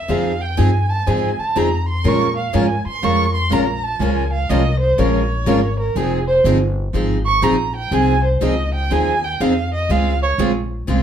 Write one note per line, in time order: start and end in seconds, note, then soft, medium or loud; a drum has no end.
0.00 0.11 E5 medium
0.08 0.57 F2 medium
0.08 0.31 F3 medium
0.08 0.31 C4 medium
0.08 0.31 D#4 medium
0.08 0.32 G#4 medium
0.08 0.42 F5 medium
0.41 0.59 G5 medium
0.57 1.06 G2 medium
0.57 0.69 F3 medium
0.57 0.70 C4 medium
0.57 0.70 D#4 medium
0.57 0.70 G#4 medium
0.57 0.91 G#5 medium
0.89 1.08 A5 medium
1.06 1.37 G#2 medium
1.06 1.29 F3 medium
1.06 1.29 C4 medium
1.06 1.30 D#4 medium
1.06 1.30 G#4 medium
1.06 1.41 G#5 medium
1.39 1.59 A5 medium
1.39 muted upright bass stroke soft
1.56 2.04 F2 medium
1.56 1.68 F3 medium
1.56 1.68 C4 medium
1.56 1.68 D#4 medium
1.56 1.68 G#4 medium
1.56 1.88 A#5 medium
1.89 2.09 C6 medium
2.04 2.52 A#2 medium
2.04 2.27 F3 medium
2.04 2.27 G#3 medium
2.04 2.27 C#4 medium
2.04 2.27 F4 medium
2.04 2.27 A#4 medium
2.04 2.36 C#6 loud
2.37 2.57 F5 medium
2.53 2.84 G#2 medium
2.53 2.65 F3 medium
2.53 2.65 G#3 medium
2.53 2.66 C#4 medium
2.53 2.65 F4 medium
2.53 2.66 A#4 medium
2.53 2.87 G#5 medium
2.86 3.05 C6 medium
2.86 muted upright bass stroke soft
3.03 3.50 F2 medium
3.03 3.25 F3 medium
3.03 3.25 G#3 medium
3.03 3.25 C#4 medium
3.03 3.25 F4 medium
3.03 3.26 A#4 medium
3.03 3.34 C#6 loud
3.35 3.54 C6 medium
3.51 3.99 A#1 medium
3.51 3.64 F3 medium
3.51 3.64 G#3 medium
3.51 3.64 C#4 medium
3.51 3.64 F4 medium
3.51 3.64 A#4 medium
3.51 3.84 A#5 medium
3.83 4.02 A5 medium
4.00 4.48 C#2 medium
4.00 4.23 F3 medium
4.00 4.23 G#3 medium
4.00 4.23 C#4 medium
4.00 4.24 F4 medium
4.00 4.23 A#4 medium
4.00 4.32 G#5 medium
4.32 4.51 F5 medium
4.49 4.97 C2 medium
4.49 4.62 F3 medium
4.49 4.62 G#3 medium
4.49 4.62 C#4 medium
4.49 4.62 F4 medium
4.49 4.62 A#4 medium
4.49 4.79 D#5 medium
4.80 5.01 C5 medium
4.98 5.46 A#1 medium
4.98 5.20 F3 medium
4.98 5.21 G#3 medium
4.98 5.21 C#4 medium
4.98 5.21 F4 medium
4.98 5.21 A#4 medium
4.98 5.79 C#5 medium
5.46 5.95 G#1 medium
5.46 5.59 F3 medium
5.46 5.59 G#3 medium
5.46 5.59 C#4 medium
5.46 5.59 F4 medium
5.46 5.59 A#4 medium
5.80 5.98 A#4 medium
5.96 6.44 F1 medium
5.96 6.18 F3 medium
5.96 6.19 C4 medium
5.96 6.19 D#4 medium
5.96 6.27 G#4 medium
5.96 6.19 G#4 medium
6.27 6.38 C5 medium
6.44 6.93 G1 medium
6.44 6.57 F3 medium
6.44 6.58 C4 medium
6.44 6.58 D#4 loud
6.44 6.58 G#4 medium
6.94 7.42 G#1 medium
6.94 7.17 F3 medium
6.94 7.17 C4 medium
6.94 7.17 D#4 medium
6.94 7.17 G#4 medium
7.25 7.45 C#6 loud
7.42 7.91 A#1 medium
7.42 7.55 F3 medium
7.42 7.55 C4 medium
7.42 7.55 D#4 medium
7.42 7.55 G#4 medium
7.42 7.75 A#5 medium
7.76 7.95 G5 medium
7.91 8.40 C2 medium
7.91 8.14 F3 medium
7.91 8.15 C4 medium
7.91 8.15 D#4 medium
7.91 8.15 G#4 medium
7.91 8.23 G#5 loud
8.24 8.44 C5 soft
8.41 8.90 C#2 medium
8.41 8.53 F3 medium
8.41 8.54 C4 medium
8.41 8.54 D#4 medium
8.41 8.54 G#4 medium
8.41 8.74 D#5 medium
8.74 8.94 G5 medium
8.91 9.39 D#2 medium
8.91 9.13 F3 medium
8.91 9.13 C4 medium
8.91 9.14 D#4 medium
8.91 9.14 G#4 medium
8.91 9.25 G#5 loud
9.24 9.42 G5 medium
9.40 9.88 F2 medium
9.40 9.52 F3 medium
9.40 9.52 C4 medium
9.40 9.53 D#4 medium
9.40 9.53 G#4 medium
9.40 9.73 F5 medium
9.74 9.93 D#5 medium
9.89 10.37 C#2 medium
9.89 10.12 C#3 medium
9.89 10.12 G#3 medium
9.89 10.12 C4 medium
9.89 10.12 F4 medium
9.89 10.13 G#4 medium
9.89 10.22 F5 medium
10.22 10.33 C#5 medium
10.38 10.87 A#1 medium
10.38 10.51 C#3 medium
10.38 10.51 G#3 medium
10.38 10.51 C4 medium
10.38 10.51 F4 medium
10.38 10.51 G#4 medium
10.87 11.03 C2 medium
10.87 11.03 C#3 medium
10.87 11.03 G#3 medium
10.87 11.03 C4 medium
10.87 11.03 F4 medium
10.87 11.03 G#4 medium